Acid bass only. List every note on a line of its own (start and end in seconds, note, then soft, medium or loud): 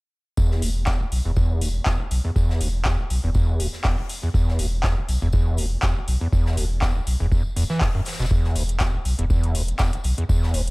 0.37 0.64 E2 loud
0.62 0.70 D2 medium
0.87 0.98 E2 medium
1.01 1.04 E1 medium
1.25 1.32 E2 medium
1.37 1.63 E2 loud
1.61 1.69 D2 medium
1.86 1.97 E2 medium
2.00 2.04 E1 medium
2.25 2.31 E2 medium
2.36 2.62 E2 loud
2.61 2.68 D2 medium
2.85 2.97 E2 medium
2.99 3.03 E1 medium
3.24 3.30 E2 medium
3.35 3.61 E2 loud
3.60 3.67 D2 medium
3.85 3.96 E2 medium
3.98 4.02 E1 medium
4.23 4.29 E2 medium
4.34 4.61 E2 loud
4.59 4.66 D2 medium
4.84 4.95 E2 medium
4.97 5.01 E1 medium
5.22 5.28 E2 medium
5.33 5.60 E2 loud
5.58 5.66 D2 medium
5.83 5.94 E2 medium
5.96 6.00 E1 medium
6.21 6.27 E2 medium
6.32 6.59 E2 loud
6.57 6.65 D2 medium
6.82 6.93 E2 medium
6.96 6.99 E1 medium
7.20 7.27 E2 medium
7.32 7.43 E2 loud
7.56 7.64 E2 medium
7.70 7.83 E3 loud
7.81 7.89 D2 medium
7.95 8.01 F#2 loud
8.20 8.26 B2 medium
8.31 8.57 E2 loud
8.56 8.63 D2 medium
8.80 8.92 E2 medium
8.94 8.98 E1 medium
9.19 9.25 E2 medium
9.30 9.56 E2 loud
9.55 9.62 D2 medium
9.80 9.91 E2 medium
9.93 9.97 E1 medium
10.18 10.24 E2 medium
10.29 10.55 E2 loud
10.54 10.61 D2 medium